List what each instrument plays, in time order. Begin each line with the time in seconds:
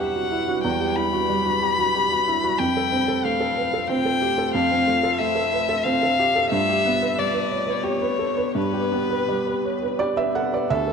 Already playing: felt piano E2 G3 E4 F#4, ambient pad F#3 G3 B4, violin F#5
0.00 felt piano G4
0.16 felt piano F#4
0.32 felt piano E4
0.49 felt piano F#4
0.63 felt piano E2, violin G5
0.80 felt piano G4
0.96 felt piano E4, violin B5
1.13 felt piano F#4
1.29 felt piano G3
1.46 felt piano F#4
1.62 felt piano G4
1.79 felt piano F#4
1.95 felt piano G4
2.12 felt piano F#4
2.28 felt piano E4
2.44 felt piano F#4
2.58 felt piano F2, ambient pad A3 F4 C5, violin G5
2.77 felt piano A4
2.92 felt piano C4
3.08 felt piano A4
3.24 felt piano A3, violin F5
3.40 felt piano A4
3.57 felt piano B4
3.74 felt piano A4
3.88 felt piano C4, violin G5
4.05 felt piano A4
4.22 felt piano G4
4.38 felt piano A4
4.54 felt piano F2, violin F5
4.71 felt piano C4
4.87 felt piano A3
5.03 felt piano A4
5.19 felt piano A3, violin E5
5.35 felt piano A4
5.53 felt piano B4
5.69 felt piano A4
5.84 felt piano C4, violin F5
6.03 felt piano A4
6.19 felt piano G4
6.36 felt piano A4
6.50 felt piano G2, ambient pad B3 G4 B4, violin E5
6.69 felt piano G4
6.85 felt piano B3
7.01 felt piano B4
7.18 felt piano G3, violin D5
7.34 felt piano B4
7.51 felt piano C#5
7.67 felt piano B4
7.83 felt piano G4, violin C#5
8.01 felt piano B4
8.19 felt piano A4
8.37 felt piano B4
8.55 felt piano G2, violin B4
8.74 felt piano G4
8.92 felt piano B3
9.10 felt piano B4
9.28 felt piano G3
9.47 felt piano B4
9.65 felt piano C#5
9.82 felt piano B4
9.99 felt piano G4 D5
10.17 felt piano B4 E5
10.35 felt piano A4 F#5
10.52 felt piano B4 D5
10.70 felt piano D2 E5, ambient pad D4 A4 F#5, violin A4
10.87 felt piano A4